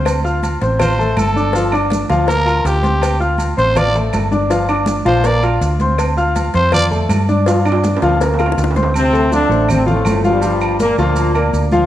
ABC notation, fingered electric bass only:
X:1
M:4/4
L:1/8
Q:1/4=162
K:Dm
V:1 name="Fingered electric bass" clef=bass
D,,3 A,,,3 G,,,2- | G,,,3 D,,3 D,,2- | D,,3 A,,,3 G,,,2- | G,,,3 B,,,3 D,,2- |
D,,3 F,,3 G,,2- | G,,3 D,,3 D,,2- | D,,3 A,,,3 G,,,2- | G,,,3 D,,3 D,,2 |]